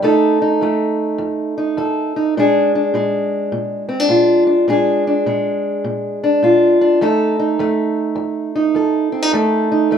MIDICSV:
0, 0, Header, 1, 2, 480
1, 0, Start_track
1, 0, Tempo, 581395
1, 26, Time_signature, 4, 2, 24, 8
1, 8238, End_track
2, 0, Start_track
2, 0, Title_t, "Steel-string acoustic guitar"
2, 0, Program_c, 0, 25
2, 19, Note_on_c, 0, 41, 73
2, 24, Note_on_c, 0, 57, 58
2, 32, Note_on_c, 0, 63, 61
2, 37, Note_on_c, 0, 69, 66
2, 335, Note_off_c, 0, 63, 0
2, 345, Note_on_c, 0, 63, 51
2, 469, Note_off_c, 0, 41, 0
2, 505, Note_off_c, 0, 57, 0
2, 505, Note_on_c, 0, 41, 67
2, 516, Note_on_c, 0, 57, 55
2, 952, Note_off_c, 0, 41, 0
2, 977, Note_on_c, 0, 41, 67
2, 1291, Note_off_c, 0, 63, 0
2, 1301, Note_on_c, 0, 63, 54
2, 1428, Note_off_c, 0, 41, 0
2, 1458, Note_off_c, 0, 69, 0
2, 1463, Note_on_c, 0, 41, 60
2, 1468, Note_on_c, 0, 69, 49
2, 1776, Note_off_c, 0, 63, 0
2, 1786, Note_on_c, 0, 63, 49
2, 1911, Note_off_c, 0, 41, 0
2, 1927, Note_off_c, 0, 69, 0
2, 1929, Note_off_c, 0, 63, 0
2, 1930, Note_off_c, 0, 57, 0
2, 1959, Note_on_c, 0, 46, 68
2, 1962, Note_on_c, 0, 56, 62
2, 1975, Note_on_c, 0, 62, 61
2, 1979, Note_on_c, 0, 68, 65
2, 2269, Note_off_c, 0, 62, 0
2, 2273, Note_on_c, 0, 62, 51
2, 2399, Note_off_c, 0, 46, 0
2, 2426, Note_on_c, 0, 46, 64
2, 2430, Note_off_c, 0, 56, 0
2, 2434, Note_on_c, 0, 56, 53
2, 2872, Note_off_c, 0, 46, 0
2, 2907, Note_on_c, 0, 46, 62
2, 3205, Note_off_c, 0, 62, 0
2, 3208, Note_on_c, 0, 60, 53
2, 3299, Note_off_c, 0, 60, 0
2, 3299, Note_on_c, 0, 62, 49
2, 3353, Note_off_c, 0, 46, 0
2, 3375, Note_on_c, 0, 46, 64
2, 3377, Note_off_c, 0, 68, 0
2, 3381, Note_on_c, 0, 65, 52
2, 3678, Note_off_c, 0, 62, 0
2, 3688, Note_on_c, 0, 62, 49
2, 3827, Note_off_c, 0, 46, 0
2, 3841, Note_off_c, 0, 62, 0
2, 3857, Note_off_c, 0, 56, 0
2, 3861, Note_on_c, 0, 46, 74
2, 3866, Note_on_c, 0, 56, 58
2, 3875, Note_on_c, 0, 62, 60
2, 3876, Note_off_c, 0, 65, 0
2, 3879, Note_on_c, 0, 68, 69
2, 4178, Note_off_c, 0, 62, 0
2, 4188, Note_on_c, 0, 62, 48
2, 4310, Note_off_c, 0, 46, 0
2, 4337, Note_off_c, 0, 56, 0
2, 4345, Note_on_c, 0, 46, 61
2, 4348, Note_on_c, 0, 56, 54
2, 4793, Note_off_c, 0, 46, 0
2, 4825, Note_on_c, 0, 46, 65
2, 5138, Note_off_c, 0, 62, 0
2, 5148, Note_on_c, 0, 62, 58
2, 5273, Note_off_c, 0, 46, 0
2, 5306, Note_on_c, 0, 46, 69
2, 5310, Note_off_c, 0, 68, 0
2, 5313, Note_on_c, 0, 65, 50
2, 5615, Note_off_c, 0, 62, 0
2, 5625, Note_on_c, 0, 62, 56
2, 5753, Note_off_c, 0, 46, 0
2, 5770, Note_off_c, 0, 62, 0
2, 5788, Note_off_c, 0, 56, 0
2, 5789, Note_on_c, 0, 41, 77
2, 5795, Note_on_c, 0, 57, 60
2, 5799, Note_on_c, 0, 63, 60
2, 5801, Note_off_c, 0, 65, 0
2, 5805, Note_on_c, 0, 69, 67
2, 6102, Note_off_c, 0, 63, 0
2, 6105, Note_on_c, 0, 63, 50
2, 6235, Note_off_c, 0, 41, 0
2, 6268, Note_on_c, 0, 41, 69
2, 6271, Note_off_c, 0, 57, 0
2, 6274, Note_on_c, 0, 57, 54
2, 6715, Note_off_c, 0, 41, 0
2, 6733, Note_on_c, 0, 41, 67
2, 7053, Note_off_c, 0, 63, 0
2, 7063, Note_on_c, 0, 63, 56
2, 7188, Note_off_c, 0, 41, 0
2, 7221, Note_off_c, 0, 69, 0
2, 7221, Note_on_c, 0, 41, 64
2, 7231, Note_on_c, 0, 69, 51
2, 7528, Note_off_c, 0, 63, 0
2, 7531, Note_on_c, 0, 60, 49
2, 7616, Note_off_c, 0, 60, 0
2, 7616, Note_on_c, 0, 63, 48
2, 7672, Note_off_c, 0, 41, 0
2, 7690, Note_off_c, 0, 69, 0
2, 7692, Note_off_c, 0, 57, 0
2, 7703, Note_on_c, 0, 41, 77
2, 7705, Note_off_c, 0, 63, 0
2, 7707, Note_on_c, 0, 57, 59
2, 7716, Note_on_c, 0, 63, 59
2, 7719, Note_on_c, 0, 69, 66
2, 8012, Note_off_c, 0, 63, 0
2, 8022, Note_on_c, 0, 63, 49
2, 8153, Note_off_c, 0, 41, 0
2, 8180, Note_off_c, 0, 57, 0
2, 8180, Note_on_c, 0, 41, 65
2, 8190, Note_on_c, 0, 57, 56
2, 8238, Note_off_c, 0, 41, 0
2, 8238, Note_off_c, 0, 57, 0
2, 8238, Note_off_c, 0, 63, 0
2, 8238, Note_off_c, 0, 69, 0
2, 8238, End_track
0, 0, End_of_file